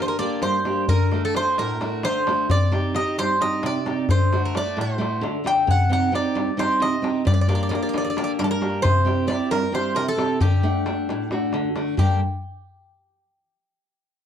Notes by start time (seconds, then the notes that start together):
Already playing: D3 A#3 D4 G4
0.02 C5
0.08 A#4, darbuka tek
0.19 A#3 D4 G4 D5
0.42 G2 C5, darbuka tek
0.65 A#3 D4 G4, darbuka tek
0.88 D3 A#4, darbuka dum
1.12 A3 D4 F#4, darbuka tek
1.25 A4
1.35 A3 D4 F#4 C5, darbuka tek
1.47 darbuka tek
1.58 A2 A#4, darbuka tek
1.70 darbuka tek
1.81 A3 D4 F#4, darbuka tek
2.03 D3 C5, darbuka tek
2.27 A3 D4 F#4, darbuka tek
2.50 C3 D5, darbuka dum
2.72 C4 D#4 G4, darbuka tek
2.94 C4 D#4 G4 D#5, darbuka tek
3.07 darbuka tek
3.18 G2 C5, darbuka tek
3.30 darbuka tek
3.41 C4 D#4 G4 D#5, darbuka tek
3.63 C3 D5, darbuka tek
3.86 C4 D#4 G4, darbuka tek
4.09 D3 C5, darbuka dum
4.21 darbuka tek
4.32 A3 D4 F#4, darbuka tek
4.44 A#4, darbuka tek
4.55 A3 D4 F#4 D5, darbuka tek
4.67 darbuka tek
4.77 A2, darbuka tek
4.81 C5
4.98 A3 D4 F#4, darbuka tek
5.21 D3, darbuka tek
5.44 A3 D4 F#4 G5, darbuka tek
5.57 darbuka tek
5.67 C3 F#5, darbuka dum
5.89 C4 D#4 G4 F#5, darbuka tek
6.12 C4 D#4 G4 D5, darbuka tek
6.26 darbuka tek
6.35 G2, darbuka tek
6.48 darbuka tek
6.57 C4 D#4 G4 C5, darbuka tek
6.80 C3 D#5, darbuka tek
7.02 C4 D#4 G4, darbuka tek
7.25 G2 D5, darbuka dum
7.34 D5
7.41 D5
7.48 A#3 D4 G4 D5, darbuka tek
7.55 D5
7.63 D5
7.69 A#3 D4 G4 D5, darbuka tek
7.75 D5
7.82 D5, darbuka tek
7.89 D5
7.93 D3, darbuka tek
7.98 D5
8.04 D5, darbuka tek
8.10 D5
8.16 A#3 D4 G4 D5, darbuka tek
8.24 D5
8.39 G2 A#4, darbuka tek
8.44 A4
8.51 A#4
8.61 A#3 D4 G4, darbuka tek
8.82 C3 C5, darbuka dum
9.05 C4 E4 G4, darbuka tek
9.27 C4 E4 G4 D5, darbuka tek
9.41 darbuka tek
9.51 G2 A#4, darbuka tek
9.63 darbuka tek
9.72 C4 E4 G4 C5, darbuka tek
9.95 C3 A#4, darbuka tek
10.08 A4
10.17 C4 E4 G4, darbuka tek
10.40 D3 G4, darbuka dum
10.52 darbuka tek
10.63 A3 D4 F#5
10.86 A3 D4 F#5, darbuka tek
11.09 A2, darbuka tek
11.31 A3 D4 F#4, darbuka tek
11.53 D3, darbuka tek
11.64 darbuka tek
11.75 A3 D4 F#4, darbuka tek
11.87 darbuka tek
11.97 G2 D3 G3 A#3 D4 G4, darbuka dum